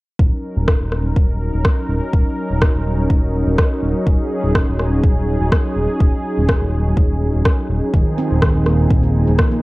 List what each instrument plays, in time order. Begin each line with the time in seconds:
0.20 analog synth bass D#1, analog synth pad F#3 C#4 D#4 A#4, kick
0.57 analog synth bass D#1
0.68 kick, cross-stick
0.81 analog synth bass D#1
0.92 cross-stick
1.16 analog synth bass D#1, kick
1.54 analog synth bass D#1
1.65 kick, cross-stick
1.89 analog synth bass D#1
2.13 analog synth bass D#1, kick
2.50 analog synth bass D#1
2.61 kick, cross-stick
2.75 analog synth bass D#1
3.10 analog synth bass D#1, kick
3.47 analog synth bass D#1
3.58 kick, cross-stick
3.83 analog synth bass D#1
4.07 analog synth bass D#1, analog synth pad G#4, kick
4.44 analog synth bass D#1
4.55 kick, cross-stick
4.68 analog synth bass D#1
4.79 cross-stick
5.03 analog synth bass D#1, kick
5.41 analog synth bass D#1
5.52 kick, cross-stick
5.76 analog synth bass D#1
6.00 analog synth bass D#1, kick
6.37 analog synth bass D#1
6.49 kick, cross-stick
6.61 analog synth bass D#1
6.97 analog synth bass D#1, kick
7.34 analog synth bass D#1
7.45 kick, cross-stick
7.70 analog synth bass D#1
7.93 analog synth bass D#1, handpan D#3, analog synth pad F3 C4 D#4 G#4, kick
8.18 handpan C4
8.31 analog synth bass D#1
8.42 handpan D#3, kick, cross-stick
8.55 analog synth bass D#1
8.66 handpan A#3, cross-stick
8.90 analog synth bass D#1, handpan A#2, kick
9.03 handpan D#3
9.27 analog synth bass D#1, handpan F3
9.39 kick, cross-stick
9.52 handpan A#3